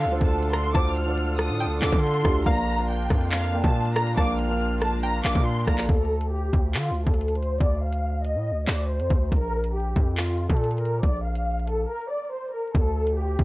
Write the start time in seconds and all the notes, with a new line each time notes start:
Already playing: D3 D4 F4 A4 C5 F5
0.05 D2 D3
0.10 D4 F4 C5
0.21 D2 A5, kick, closed hi-hat
0.43 closed hi-hat
0.53 A#5 C6, cross-stick
0.64 closed hi-hat
0.73 D2 D3 D4 F4 C5 A5 D6, kick, closed hi-hat
0.96 F6, closed hi-hat
1.05 D3 D4 F4 C5
1.18 closed hi-hat
1.39 D#6, cross-stick
1.50 A2
1.60 G5, closed hi-hat
1.66 D2
1.80 D2 D3 D4 F4 A4 D6, clap
1.92 D3, kick, closed hi-hat
2.00 C6, closed hi-hat
2.07 closed hi-hat
2.14 closed hi-hat
2.21 D2 D3 D4, kick, cross-stick, closed hi-hat
2.25 F4 G4, closed hi-hat
2.45 A#1 A#3 D4 A#4 D5 F5 A#5, kick, closed hi-hat
2.76 A#3 A#4 D5 F5, closed hi-hat
2.89 G5
3.10 F2, kick, cross-stick, closed hi-hat
3.21 closed hi-hat
3.32 F5, clap
3.51 A#3 A#4 D5 G5
3.63 A#2 A5, kick, closed hi-hat
3.85 closed hi-hat
3.95 A#5, cross-stick
4.07 closed hi-hat
4.16 A#1 A#3 A#4 D5 F5 A5 D6, kick, closed hi-hat
4.39 F6, closed hi-hat
4.48 A#3 A#4 D5 F5
4.60 closed hi-hat
4.82 A5, cross-stick
5.02 G5 A#5, closed hi-hat
5.23 A1 A#3 A#4 D5 F5 D6, clap
5.35 A#2, kick, closed hi-hat
5.46 C6
5.66 A#1 A#3 A#4 D5 F5 A#5, kick, cross-stick, closed hi-hat
5.78 clap
5.89 D2 A4, kick, closed hi-hat
6.21 closed hi-hat
6.32 G4
6.53 D2, kick, closed hi-hat
6.74 D3 F4, clap, closed hi-hat
6.91 D2
7.06 D2 A4, kick, closed hi-hat
7.14 closed hi-hat
7.21 closed hi-hat
7.28 closed hi-hat
7.35 C5, closed hi-hat
7.43 closed hi-hat
7.60 D2 D5, kick, closed hi-hat
7.81 F5
7.92 closed hi-hat
8.25 D#5, closed hi-hat
8.35 A2
8.51 D2
8.67 D2 D5, clap
8.78 closed hi-hat
8.89 C5
9.00 F2, closed hi-hat
9.10 D2, kick, closed hi-hat
9.32 A#1 A#4, kick, closed hi-hat
9.64 closed hi-hat
9.75 G4
9.96 F2, kick, closed hi-hat
10.17 F4, clap, closed hi-hat
10.49 A#2 A4, kick, closed hi-hat
10.57 closed hi-hat
10.64 closed hi-hat
10.71 closed hi-hat
10.78 A#4, closed hi-hat
10.85 closed hi-hat
11.03 A#1 D5, kick, closed hi-hat
11.25 F5
11.35 closed hi-hat
11.67 A4, closed hi-hat
11.88 A#4
12.11 D5
12.32 C5
12.53 A#4
12.74 D2 A4, kick, closed hi-hat
13.07 closed hi-hat
13.18 G4
13.39 D2, kick, closed hi-hat